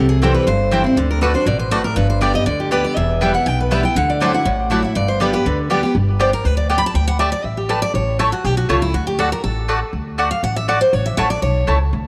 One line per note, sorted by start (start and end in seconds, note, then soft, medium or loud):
0.00 0.34 C2 medium
0.00 0.45 C3 medium
0.09 0.21 G#4 medium
0.22 0.46 E3 medium
0.22 0.46 G3 medium
0.22 0.31 C4 medium
0.22 0.47 C4 medium
0.22 0.32 E4 medium
0.22 0.47 E4 medium
0.22 0.34 A4 medium
0.22 0.32 C5 medium
0.22 0.32 G5 medium
0.34 0.46 B4 medium
0.47 0.84 G1 medium
0.47 0.95 G2 medium
0.47 0.70 C5 medium
0.71 0.84 E3 medium
0.71 0.84 G3 medium
0.71 0.81 C4 medium
0.71 0.85 C4 medium
0.71 0.81 E4 medium
0.71 0.83 E4 medium
0.71 0.81 C5 medium
0.71 0.81 G5 medium
0.84 0.97 C4 soft
0.84 0.96 E4 medium
0.96 1.33 D2 medium
0.96 1.20 D3 medium
1.11 1.21 A#4 medium
1.21 1.34 D3 medium
1.21 1.31 A3 medium
1.21 1.34 A3 medium
1.21 1.34 D4 medium
1.21 1.31 F#4 medium
1.21 1.33 F#4 medium
1.21 1.34 B4 medium
1.21 1.31 D5 medium
1.21 1.31 F#5 medium
1.34 1.47 D4 soft
1.34 1.46 F#4 medium
1.34 1.46 C5 medium
1.46 1.83 A1 medium
1.46 1.70 B2 medium
1.46 1.59 D5 medium
1.59 1.72 C5 medium
1.71 1.95 A2 medium
1.71 1.81 A3 medium
1.71 1.81 F#4 medium
1.71 1.84 B4 medium
1.71 1.81 D5 medium
1.71 1.81 F#5 medium
1.84 1.96 A#4 medium
1.96 2.33 G1 medium
1.96 2.44 G2 medium
1.96 2.09 B4 medium
2.10 2.21 C5 medium
2.21 2.33 D3 medium
2.21 2.34 G3 medium
2.21 2.31 B3 medium
2.21 2.34 B3 medium
2.21 2.31 G4 medium
2.21 2.32 G4 medium
2.21 2.34 D5 medium
2.21 2.31 D5 medium
2.21 2.31 G5 medium
2.34 2.47 B3 soft
2.34 2.46 G4 medium
2.34 2.46 D#5 loud
2.46 2.83 D2 medium
2.46 2.70 D3 medium
2.46 2.59 D5 medium
2.60 2.71 G4 medium
2.71 2.95 D3 medium
2.71 2.95 G3 medium
2.71 2.80 B3 medium
2.71 2.96 B3 medium
2.71 2.81 G4 medium
2.71 2.96 G4 medium
2.71 2.84 B4 medium
2.71 2.81 D5 medium
2.71 2.81 G5 medium
2.84 2.96 D5 medium
2.96 3.33 E1 medium
2.96 3.44 E2 medium
2.96 3.34 E5 medium
3.21 3.34 E3 medium
3.21 3.34 G3 medium
3.21 3.30 B3 medium
3.21 3.34 B3 medium
3.21 3.30 E4 medium
3.21 3.33 E4 medium
3.21 3.31 B4 medium
3.21 3.31 G5 medium
3.34 3.47 B3 soft
3.34 3.46 E4 medium
3.34 3.47 F#5 medium
3.46 3.83 B1 medium
3.46 3.93 B2 medium
3.46 3.59 G5 loud
3.60 3.71 B4 medium
3.71 3.83 E3 medium
3.71 3.83 G3 medium
3.71 3.80 B3 medium
3.71 3.84 B3 medium
3.71 3.80 E4 medium
3.71 3.82 E4 medium
3.71 3.81 B4 loud
3.71 3.84 E5 medium
3.71 3.81 G5 medium
3.83 3.96 B3 soft
3.83 3.95 E4 medium
3.83 3.96 G5 medium
3.96 4.33 D2 medium
3.96 4.44 D3 medium
3.96 4.09 F#5 medium
4.10 4.21 D5 medium
4.20 4.33 F#3 medium
4.20 4.30 A3 medium
4.20 4.33 A3 medium
4.20 4.30 E4 medium
4.20 4.34 E4 medium
4.20 4.32 F#4 medium
4.20 4.34 C5 medium
4.20 4.30 D5 medium
4.20 4.31 F#5 loud
4.33 4.46 E4 soft
4.33 4.45 F#4 medium
4.33 4.69 F#5 medium
4.45 4.83 A1 medium
4.45 4.93 A2 medium
4.70 4.83 F#3 medium
4.70 4.80 A3 medium
4.70 4.83 A3 medium
4.70 4.80 E4 medium
4.70 4.83 E4 medium
4.70 4.81 F#4 medium
4.70 4.80 D5 medium
4.70 4.80 F#5 loud
4.82 4.96 E4 medium
4.82 4.95 F#4 medium
4.95 5.33 G1 medium
4.95 5.43 G2 medium
4.95 5.08 D5 medium
5.08 5.20 C5 medium
5.20 5.32 D3 medium
5.20 5.33 G3 medium
5.20 5.30 B3 medium
5.20 5.33 B3 medium
5.20 5.30 G4 medium
5.20 5.32 G4 medium
5.20 5.33 B4 medium
5.20 5.30 D5 medium
5.20 5.30 G5 medium
5.33 5.46 B3 soft
5.33 5.45 G4 medium
5.33 5.57 B4 medium
5.46 5.82 D2 medium
5.46 5.69 D3 medium
5.70 5.82 D3 medium
5.70 5.83 G3 medium
5.70 5.79 B3 medium
5.70 5.83 B3 medium
5.70 5.80 G4 medium
5.70 5.82 G4 medium
5.70 5.80 D5 medium
5.70 5.80 G5 medium
5.83 5.96 B3 soft
5.83 5.95 G4 medium
5.95 6.32 G1 loud
6.20 6.29 B3 medium
6.20 6.29 G4 medium
6.20 6.33 C5 medium
6.20 6.29 D5 medium
6.20 6.30 G5 loud
6.33 6.45 A#4 medium
6.45 6.82 D2 medium
6.45 6.57 B4 medium
6.57 6.69 D5 medium
6.70 6.79 B3 medium
6.70 6.79 G4 medium
6.70 6.79 D5 medium
6.70 6.78 G5 medium
6.70 6.80 G5 medium
6.78 6.86 B5 loud
6.86 6.94 A5 medium
6.94 7.31 D2 loud
6.94 7.07 G5 medium
7.08 7.19 F#5 loud
7.19 7.29 A3 medium
7.19 7.29 G4 medium
7.19 7.29 D5 medium
7.19 7.32 E5 medium
7.19 7.29 A5 medium
7.32 7.44 D5 medium
7.44 7.81 A1 medium
7.44 7.57 E5 loud
7.57 7.69 G4 medium
7.69 7.79 A3 medium
7.69 7.79 G4 medium
7.69 7.82 B4 medium
7.69 7.79 D5 medium
7.69 7.79 A5 medium
7.82 7.94 D5 loud
7.94 8.31 A1 loud
7.94 8.18 C#5 medium
8.19 8.29 A3 medium
8.19 8.29 E4 loud
8.19 8.32 A4 medium
8.19 8.29 C#5 medium
8.19 8.29 A5 loud
8.32 8.45 F#4 medium
8.44 8.66 B1 medium
8.44 8.57 G4 medium
8.57 8.69 F#4 medium
8.69 8.90 C#2 medium
8.69 8.78 A3 medium
8.69 8.79 E4 medium
8.69 8.82 F4 medium
8.69 8.79 C#5 medium
8.69 8.79 A5 medium
8.82 8.94 E4 medium
8.94 9.31 D2 loud
8.94 9.06 F#4 medium
9.07 9.19 G4 medium
9.19 9.28 A3 medium
9.19 9.28 F#4 medium
9.19 9.31 A4 medium
9.19 9.29 D5 medium
9.19 9.29 F#5 loud
9.32 9.43 A#4 loud
9.44 9.81 A1 medium
9.44 9.90 A4 medium
9.68 9.78 A3 medium
9.68 9.78 F#4 medium
9.68 9.78 D5 loud
9.68 9.78 F#5 medium
9.93 10.30 D2 medium
10.18 10.28 A3 medium
10.18 10.28 F#4 loud
10.18 10.28 D5 loud
10.18 10.28 F#5 medium
10.31 10.43 F5 medium
10.43 10.80 A1 medium
10.43 10.56 F#5 medium
10.56 10.68 E5 medium
10.68 10.77 A3 medium
10.68 10.78 F#4 medium
10.68 10.81 D5 medium
10.68 10.78 D5 medium
10.68 10.78 F#5 loud
10.81 10.93 C5 loud
10.93 11.11 A1 loud
10.93 11.06 C#5 medium
11.06 11.17 E5 loud
11.17 11.39 A1 medium
11.17 11.27 A3 medium
11.17 11.27 E4 medium
11.17 11.28 C#5 medium
11.17 11.30 F#5 loud
11.17 11.28 A5 medium
11.30 11.42 D5 loud
11.42 11.64 B1 medium
11.42 11.78 C#5 medium
11.67 11.89 C#2 medium
11.67 11.77 A3 medium
11.67 11.77 E4 medium
11.67 11.77 C#5 medium
11.67 11.77 A5 loud
11.93 12.07 D2 loud